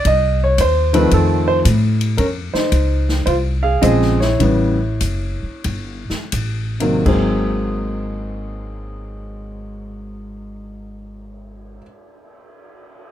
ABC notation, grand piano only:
X:1
M:4/4
L:1/8
Q:"Swing" 1/4=92
K:Abmix
V:1 name="Grand piano"
e d c =B =A c z2 | [DB] [Ec]3 [Fc] [Af] [Ae] [_Fd]- | [_Fd]6 z2 | A8- |
A8 |]
V:2 name="Grand piano" clef=bass
z3 [E,F,=A,C]3 z2 | z6 [D,F,A,C] z | [^C,=E,=G,_C] z6 [=C,_E,_G,B,] | [A,,G,B,C]8- |
[A,,G,B,C]8 |]